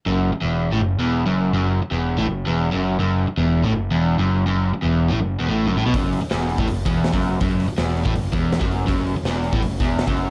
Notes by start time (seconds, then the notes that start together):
0.06 F#1 F#2
0.33 muted overdriven electric guitar stroke, muted picked electric bass stroke
0.42 E1 E2
0.72 A1 A2
0.80 F#1 F#2
0.98 E1 E2
1.26 F#1 F#2
1.53 F#1 F#2
1.82 muted picked electric bass stroke, muted overdriven electric guitar stroke
1.91 E1 E2
2.17 A1 A2
2.27 F#1 F#2
2.46 E1 E2
2.72 F#1 F#2
2.99 F#1 F#2
3.28 muted overdriven electric guitar stroke, muted picked electric bass stroke
3.37 E1 E2
3.64 A1 A2
3.73 F#1 F#2
3.91 E1 E2
4.18 F#1 F#2
4.46 F#1 F#2
4.74 muted overdriven electric guitar stroke, muted picked electric bass stroke
4.82 E1 E2
5.10 A1 A2
5.20 F#1 F#2
5.40 E1 E2
5.48 A1 A2
5.66 F#1 F#2
5.76 A1 A2
5.86 B1 B2
5.94 F#1 F#2, kick, open hi-hat
6.13 open hi-hat
6.22 muted picked electric bass stroke, muted overdriven electric guitar stroke
6.31 E1 E2, snare, open hi-hat
6.49 open hi-hat
6.58 A1 A2, kick
6.67 F#1 F#2, open hi-hat
6.86 E1 E2, kick, open hi-hat
7.04 snare, open hi-hat
7.13 F#1 F#2, kick
7.22 open hi-hat
7.41 F#1 F#2, kick, open hi-hat
7.60 open hi-hat
7.69 muted overdriven electric guitar stroke, muted picked electric bass stroke
7.78 E1 E2, snare, open hi-hat
7.97 open hi-hat
8.04 A1 A2, kick
8.15 F#1 F#2, open hi-hat
8.33 E1 E2, kick, open hi-hat
8.52 snare, open hi-hat
8.60 F#1 F#2, kick
8.71 open hi-hat
8.87 F#1 F#2, kick, open hi-hat
9.07 open hi-hat
9.16 muted picked electric bass stroke, muted overdriven electric guitar stroke
9.23 E1 E2, snare, open hi-hat
9.43 open hi-hat
9.53 A1 A2, kick
9.61 F#1 F#2, open hi-hat
9.80 E1 E2, kick, open hi-hat
9.99 snare, open hi-hat
10.07 F#1 F#2, kick
10.17 open hi-hat